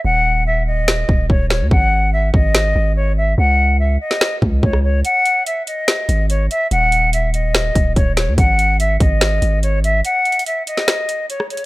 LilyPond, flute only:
\new Staff \with { instrumentName = "Flute" } { \time 4/4 \key dis \phrygian \tempo 4 = 144 fis''4 e''8 dis''4. cis''8 cis''8 | fis''4 e''8 dis''4. cis''8 e''8 | fis''4 e''8 dis''4. cis''8 cis''8 | fis''4 e''8 dis''4. cis''8 e''8 |
fis''4 e''8 dis''4. cis''8 cis''8 | fis''4 e''8 dis''4. cis''8 e''8 | fis''4 e''8 dis''4. cis''8 cis''8 | }